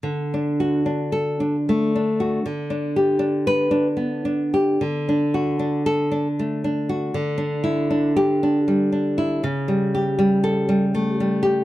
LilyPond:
\new Staff \with { instrumentName = "Nylon-string guitar" } { \time 3/4 \key d \major \tempo 4 = 78 << { r4 \tuplet 3/2 { r8 a'4 } r4 | r4 \tuplet 3/2 { r8 b'4 } r4 | r4 \tuplet 3/2 { r8 a'4 } r4 | r4 \tuplet 3/2 { r8 g'4 } r4 |
r4 \tuplet 3/2 { r8 a'4 } r4 | } \\ { \tuplet 3/2 { d8 d'8 fis'8 d'4 d'8 a8 d'8 fis'8 } | \tuplet 3/2 { d8 d'8 g'8 d'4 d'8 b8 d'8 g'8 } | \tuplet 3/2 { d8 d'8 fis'8 d'4 d'8 a8 d'8 fis'8 } | \tuplet 3/2 { d8 d'8 e'8 d'4 d'8 g8 d'8 e'8 } |
\tuplet 3/2 { cis8 g8 g'8 g4 g8 a8 g8 g'8 } | } >> }